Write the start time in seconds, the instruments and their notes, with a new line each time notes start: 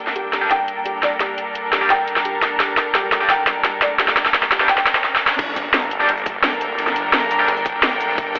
Already playing: string section G3 A#3 D4 A4 A#4 G5, riser
0.07 snare
0.16 felt piano G4, closed hi-hat
0.33 felt piano G4, snare, closed hi-hat
0.42 distorted electric guitar G3 D4 G4
0.51 felt piano G5, snare, closed hi-hat
0.68 closed hi-hat
0.85 felt piano G4, closed hi-hat
1.03 felt piano D5, snare, closed hi-hat
1.20 felt piano G4, snare, closed hi-hat
1.38 closed hi-hat
1.55 closed hi-hat
1.73 felt piano G4, snare, closed hi-hat
1.81 distorted electric guitar G3 D4 G4
1.90 felt piano G5, snare, closed hi-hat
2.08 closed hi-hat
2.16 snare
2.25 felt piano G4, closed hi-hat
2.42 snare, closed hi-hat
2.60 felt piano G4, snare, closed hi-hat
2.77 snare, closed hi-hat
2.95 felt piano G4, snare, closed hi-hat
3.12 felt piano G4, snare, closed hi-hat
3.21 distorted electric guitar G3 D4 G4
3.30 felt piano G5, snare, closed hi-hat
3.47 snare, closed hi-hat
3.65 felt piano G4, snare, closed hi-hat
3.82 felt piano D5, snare, closed hi-hat
3.99 felt piano G4, snare, closed hi-hat
4.08 snare
4.17 snare, closed hi-hat
4.26 snare
4.34 snare, closed hi-hat
4.43 snare
4.52 felt piano G4, snare, closed hi-hat
4.60 distorted electric guitar G3 D4 G4, snare
4.69 felt piano G5, snare, closed hi-hat
4.78 snare
4.87 snare, closed hi-hat
4.95 snare
5.04 snare
5.16 snare
5.27 snare
5.39 detuned saw bass G1, string section G3 D4 A4 A#4, kick, closed hi-hat, crash
5.48 string section A#3
5.55 kick, snare, closed hi-hat, cabasa
5.73 snare, closed hi-hat
5.82 snare, cabasa
5.90 closed hi-hat, cabasa
5.99 distorted electric guitar G3 D4 G4, snare
6.09 closed hi-hat
6.17 closed hi-hat, cabasa
6.26 kick, closed hi-hat, cabasa
6.34 string section G5
6.39 detuned saw bass F1
6.43 snare, closed hi-hat
6.52 cabasa
6.61 detuned saw bass D#1, closed hi-hat, cabasa
6.78 detuned saw bass G1, closed hi-hat
6.87 snare, cabasa
6.96 closed hi-hat, cabasa
7.13 snare, closed hi-hat
7.22 cabasa
7.31 detuned saw bass G1, closed hi-hat, cabasa
7.39 distorted electric guitar G3 D4 G4, snare
7.48 snare, closed hi-hat
7.57 closed hi-hat, cabasa
7.66 kick, closed hi-hat, cabasa
7.83 detuned saw bass A1, snare, closed hi-hat
7.92 cabasa
8.00 closed hi-hat, open hi-hat, cabasa
8.09 snare
8.18 detuned saw bass G1, kick, closed hi-hat
8.35 kick, snare, closed hi-hat, cabasa